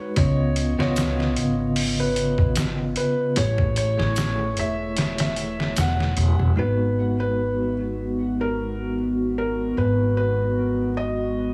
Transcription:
0.16 upright bass C#2, tine electric piano C#3 B3 F4 D#5, felt piano C#5, kick, closed hi-hat
0.56 closed hi-hat
0.78 upright bass C#2, tine electric piano C#3 B3 F4 D#5, felt piano C#5, snare
0.96 snare, closed hi-hat, shaker
1.20 snare
1.36 upright bass G#1, closed hi-hat
1.76 open hi-hat
2.00 felt piano B4
2.16 closed hi-hat
2.38 kick
2.56 snare, closed hi-hat, shaker
2.96 felt piano B4, closed hi-hat
3.36 upright bass A1, tine electric piano A3 E4 G#4 C#5, felt piano C#5, closed hi-hat
3.58 kick
3.76 felt piano C#5, closed hi-hat
3.98 upright bass A1, tine electric piano A3 E4 G#4 C#5, snare
4.16 snare, closed hi-hat, shaker
4.57 upright bass E1, felt piano E5, closed hi-hat
4.97 snare, closed hi-hat
5.18 felt piano E5, snare, closed hi-hat
5.36 closed hi-hat
5.60 snare
5.76 upright bass E1, felt piano F#5, snare, closed hi-hat, shaker
6.00 snare
6.17 upright bass E1, closed hi-hat
6.39 upright bass E1
6.56 upright bass G#1, tine electric piano G#3 B3 D#4 F#4, ambient pad G#3 B3 F#4, felt piano B4
7.20 felt piano B4
8.41 felt piano A#4
9.38 felt piano A#4
9.77 upright bass G#1, felt piano B4
10.17 felt piano B4
10.97 felt piano D#5

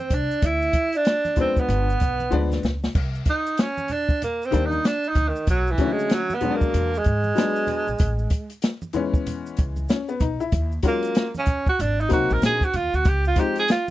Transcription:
Already playing: tenor saxophone C4, vibraphone C5
0.10 upright bass C2, tenor saxophone D4, vibraphone D5, kick, closed hi-hat, low conga, maracas
0.31 maracas
0.42 upright bass D2, tenor saxophone E4, vibraphone E5, kick, closed hi-hat, maracas
0.62 maracas
0.73 kick, closed hi-hat, high conga, maracas
0.93 tenor saxophone D4, vibraphone D5, closed hi-hat, maracas
1.05 snare, closed hi-hat, maracas
1.25 snare, high conga, maracas
1.36 upright piano F3 G#3 B3 D4, vibraphone C5, kick, closed hi-hat, low conga, maracas
1.40 tenor saxophone C4
1.56 tenor saxophone B3, vibraphone B4, kick, maracas
1.69 upright bass G1, closed hi-hat, low conga, maracas
1.90 maracas
2.00 upright bass B1, kick, closed hi-hat, maracas
2.20 high conga, maracas
2.30 upright bass D2, upright piano F3 G#3 B3 D4, high conga, maracas
2.52 snare, high conga, maracas
2.63 upright bass C#2, snare, low conga, maracas
2.84 snare, maracas
2.95 upright bass C2, kick, crash, maracas
3.15 maracas
3.25 kick, closed hi-hat, maracas
3.30 tenor saxophone D#4
3.46 maracas
3.57 tenor saxophone C#4, snare, closed hi-hat, maracas
3.77 high conga, maracas
3.88 tenor saxophone D4, closed hi-hat, low conga, maracas
4.09 kick, maracas
4.22 tenor saxophone A#3, closed hi-hat, low conga, maracas
4.42 tenor saxophone C4, maracas
4.51 upright bass D#2, upright piano D#3 G3 A#3 D4, kick, closed hi-hat, maracas
4.66 tenor saxophone D#4
4.72 high conga, maracas
4.84 tenor saxophone D4, snare, closed hi-hat, maracas
5.04 maracas
5.08 tenor saxophone D#4
5.15 upright bass D2, kick, closed hi-hat, low conga, maracas
5.28 tenor saxophone D#3
5.36 maracas
5.47 upright bass B1, tenor saxophone F#3, kick, closed hi-hat, maracas
5.67 maracas
5.71 tenor saxophone E3
5.78 upright piano C#3 F#3 A3 C#4, kick, closed hi-hat, maracas
5.84 upright piano D3
5.92 tenor saxophone G#3
5.99 maracas
6.10 tenor saxophone F#3, snare, closed hi-hat, maracas
6.30 snare, high conga, maracas
6.34 tenor saxophone B3
6.41 upright piano B2 F#3 G#3 C#4, closed hi-hat, low conga, maracas
6.50 upright piano D4
6.55 tenor saxophone A#3
6.61 kick, maracas
6.74 upright bass E2, closed hi-hat, low conga, maracas
6.94 tenor saxophone G#3, maracas
7.04 upright bass G#2, kick, closed hi-hat, maracas
7.24 high conga, maracas
7.35 upright piano F#3 G#3 B3 D4, snare, closed hi-hat, maracas
7.56 maracas
7.67 closed hi-hat, low conga, maracas
7.88 upright bass A#1, maracas
7.98 upright bass A1, kick, closed hi-hat, maracas
8.19 maracas
8.30 kick, closed hi-hat, maracas
8.50 closed hi-hat, maracas
8.62 snare, closed hi-hat, maracas
8.82 high conga, maracas
8.93 upright piano E3 G#3 B3 C#4, closed hi-hat, low conga, maracas
9.14 kick, maracas
9.27 closed hi-hat, low conga, maracas
9.46 maracas
9.57 upright bass C#2, kick, closed hi-hat, maracas
9.76 high conga, maracas
9.89 upright piano C#4, snare, closed hi-hat, maracas
10.08 upright piano B3, maracas
10.20 upright bass B1, upright piano D#4, kick, closed hi-hat, low conga, maracas
10.40 upright piano E4, maracas
10.52 upright bass D#2, kick, closed hi-hat, maracas
10.72 maracas
10.83 upright piano F#3 G#3 C#4 F4, kick, closed hi-hat, maracas
10.87 tenor saxophone A#3
11.03 closed hi-hat, maracas
11.15 snare, closed hi-hat, maracas
11.35 tenor saxophone C#4, snare, high conga, maracas
11.46 kick, closed hi-hat, low conga, maracas
11.66 tenor saxophone F#4, kick, maracas
11.79 upright bass G#1, tenor saxophone D4, closed hi-hat, low conga, maracas
12.00 tenor saxophone D#4, maracas
12.09 upright bass C2, upright piano F#3 A#3 C4 D#4, tenor saxophone F#4, kick, closed hi-hat, maracas
12.30 upright bass A#1, tenor saxophone A#4, high conga, maracas
12.42 upright bass A#1, tenor saxophone G#4, snare, closed hi-hat, maracas
12.61 tenor saxophone F#4, kick, maracas
12.74 upright bass D#2, tenor saxophone F4, closed hi-hat, low conga, maracas
12.93 upright bass D2, tenor saxophone F#4, maracas
13.05 upright bass C#2, tenor saxophone G4, kick, closed hi-hat, maracas
13.25 tenor saxophone F4, maracas
13.36 upright piano F3 G#3 C4 D#4, tenor saxophone G4, kick, closed hi-hat, maracas
13.56 tenor saxophone G#4, closed hi-hat, maracas
13.68 tenor saxophone F4, snare, closed hi-hat, maracas

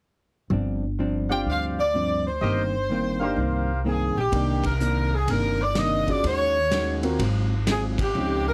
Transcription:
0.50 upright bass G1, hollow-body jazz guitar G2 F3 C4 D4
0.99 hollow-body jazz guitar G2 F3 C4 D4
1.29 grand piano C4 D4 F4 G4, trumpet section G4 C5 D5 F5, saxophone section G5
1.46 upright bass D2, hollow-body jazz guitar G2 F3 C4 D4
1.50 saxophone section F5
1.80 saxophone section D5
1.94 hollow-body jazz guitar G2 F3 C4 D4
2.27 saxophone section C5
2.41 upright bass G1, hollow-body jazz guitar G2 D#3 A#3, trumpet section G4 A#4 C5 D#5
2.45 hollow-body jazz guitar C4
2.89 hollow-body jazz guitar G2 D#3 A#3 C4
3.19 grand piano A#3 D4 D#4 G4, trumpet section G4 A#4 C5 F5
3.36 upright bass C2, hollow-body jazz guitar G2 D#3 A#3 C4
3.84 hollow-body jazz guitar G2 D#3 A#3 C4, saxophone section G#4
4.16 upright bass A#1, saxophone section G4
4.32 upright bass C2, hollow-body jazz guitar C3 D#3 A#3 D4, grand piano A#3 D4 D#4 G4, kick, ride
4.64 saxophone section A#4, kick, ride
4.80 hollow-body jazz guitar C3 D#3 A#3 D4, hi-hat pedal
5.14 saxophone section G#4
5.27 upright bass G1, hollow-body jazz guitar C3 D#3 A#3, saxophone section A#4, kick, ride
5.32 hollow-body jazz guitar D4
5.62 saxophone section D5
5.75 hollow-body jazz guitar C3 D#3 A#3 D4, saxophone section D#5, snare, hi-hat pedal, ride
6.07 grand piano C#4 F4 F#4 G#4, saxophone section D5, kick, ride
6.23 upright bass D#2, hollow-body jazz guitar D#3 G#3 C#4 F#4, saxophone section C#5, kick, ride
6.71 hollow-body jazz guitar D#3 G#3 C#4 F#4, snare, hi-hat pedal, ride
7.03 grand piano C4 F4 F#4 A#4, ride
7.19 upright bass G#1, hollow-body jazz guitar G#2 F#3 C4 F4, kick, ride
7.67 hollow-body jazz guitar G#2 F#3 C4 F4, saxophone section G#4, snare, hi-hat pedal, ride
7.98 saxophone section G4, kick, ride
8.15 upright bass C#2, hollow-body jazz guitar C#3 F3 C4 D#4
8.48 saxophone section A#4

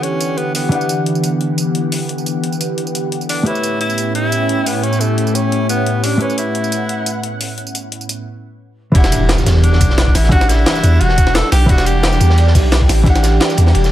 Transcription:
Already playing: hollow-body jazz guitar D3 E3 G4 F#5, analog synth pad D3 E3 B3 G4 F#5
0.03 tenor saxophone C#4, closed hi-hat
0.21 closed hi-hat, tambourine
0.38 tenor saxophone B3, closed hi-hat
0.55 tenor saxophone B3, open hi-hat, tambourine
0.69 hollow-body jazz guitar E3 D4, closed hi-hat
0.73 hollow-body jazz guitar G4 F#5
0.81 tambourine
0.89 closed hi-hat, tambourine
1.06 closed hi-hat
1.15 tambourine
1.24 closed hi-hat, tambourine
1.41 closed hi-hat
1.58 closed hi-hat, tambourine
1.75 closed hi-hat
1.92 open hi-hat, tambourine
2.09 closed hi-hat
2.18 tambourine
2.26 closed hi-hat, tambourine
2.44 closed hi-hat
2.52 tambourine
2.61 closed hi-hat, tambourine
2.78 closed hi-hat
2.87 tambourine
2.95 closed hi-hat, tambourine
3.12 closed hi-hat
3.21 tambourine
3.29 tenor saxophone D4, open hi-hat, tambourine
3.43 analog synth pad A2 C#4 E4 G4, hollow-body jazz guitar A3 G4, tenor saxophone E4, closed hi-hat
3.47 hollow-body jazz guitar B4 C#5
3.55 tambourine
3.63 closed hi-hat, tambourine
3.81 tenor saxophone E4, closed hi-hat
3.90 tambourine
3.98 closed hi-hat, tambourine
4.15 tenor saxophone E4, closed hi-hat
4.32 closed hi-hat, tambourine
4.49 closed hi-hat
4.66 tenor saxophone B3, open hi-hat, tambourine
4.84 tenor saxophone C#4, closed hi-hat
4.93 tambourine
5.01 tenor saxophone A3, closed hi-hat, tambourine
5.18 closed hi-hat
5.27 tambourine
5.35 tenor saxophone C#4, closed hi-hat, tambourine
5.52 closed hi-hat
5.69 tenor saxophone B3, closed hi-hat, tambourine
5.86 closed hi-hat
6.04 tenor saxophone D4, open hi-hat, tambourine
6.18 hollow-body jazz guitar A3 G4, tenor saxophone C#4, analog synth pad F#5, closed hi-hat
6.22 hollow-body jazz guitar B4 C#5
6.30 tambourine
6.38 tenor saxophone E4, closed hi-hat, tambourine
6.55 closed hi-hat
6.64 tambourine
6.72 closed hi-hat, tambourine
6.89 closed hi-hat
7.06 closed hi-hat, tambourine
7.23 closed hi-hat
7.41 open hi-hat, tambourine
7.58 closed hi-hat
7.67 tambourine
7.75 closed hi-hat, tambourine
7.92 closed hi-hat
8.01 tambourine
8.09 closed hi-hat, tambourine
8.92 808-style bass E1, hollow-body jazz guitar E3 D4, analog synth pad G3 D4 F#5, tenor saxophone E4, kick, closed hi-hat, ride, impact
8.96 hollow-body jazz guitar G4 F#5
9.04 snare, tambourine
9.12 closed hi-hat, ride, tambourine
9.29 snare, closed hi-hat, ride
9.38 snare, tambourine
9.46 808-style bass E2, snare, closed hi-hat, ride, tambourine
9.55 snare
9.63 tenor saxophone D4, closed hi-hat, ride
9.73 snare
9.81 808-style bass B1, kick, closed hi-hat, ride, tambourine
9.90 snare
9.98 snare, closed hi-hat, ride
10.07 kick, ride
10.15 808-style bass A1, tenor saxophone E4, snare, open hi-hat, ride, tambourine
10.24 snare
10.29 hollow-body jazz guitar E3 D4, tenor saxophone F#4, kick, closed hi-hat, ride
10.33 hollow-body jazz guitar G4 F#5
10.41 snare, tambourine
10.49 tenor saxophone E4, snare, closed hi-hat, ride, tambourine
10.59 ride
10.66 snare, closed hi-hat, ride
10.75 snare, tambourine
10.83 808-style bass E2, closed hi-hat, ride, tambourine
11.00 808-style bass E1, tenor saxophone F#4, closed hi-hat, ride
11.09 snare
11.18 kick, closed hi-hat, ride, tambourine
11.27 snare
11.35 tenor saxophone A4, snare, closed hi-hat, ride
11.52 808-style bass B1, tenor saxophone G4, snare, open hi-hat, ride, tambourine
11.66 808-style bass E1, hollow-body jazz guitar E3 D4, tenor saxophone F#4, analog synth pad G4, kick, closed hi-hat, ride
11.70 hollow-body jazz guitar G4 F#5
11.78 snare, tambourine
11.86 tenor saxophone G4, closed hi-hat, ride, tambourine
12.03 snare, closed hi-hat, ride
12.13 snare, tambourine
12.20 808-style bass E2, closed hi-hat, ride, tambourine
12.30 snare
12.38 closed hi-hat, ride
12.47 snare
12.55 808-style bass B1, kick, snare, closed hi-hat, open hi-hat, tambourine
12.63 ride
12.72 snare, closed hi-hat, ride
12.81 kick, ride
12.89 808-style bass A1, snare, open hi-hat, ride, tambourine
13.03 hollow-body jazz guitar E3 D4, kick, closed hi-hat, ride
13.07 hollow-body jazz guitar G4 F#5
13.15 snare, tambourine
13.23 snare, closed hi-hat, ride, tambourine
13.32 ride
13.40 snare, closed hi-hat, ride
13.49 snare, tambourine
13.57 808-style bass E2, closed hi-hat, ride, tambourine
13.67 snare
13.75 808-style bass E1, closed hi-hat, ride
13.84 snare, tambourine

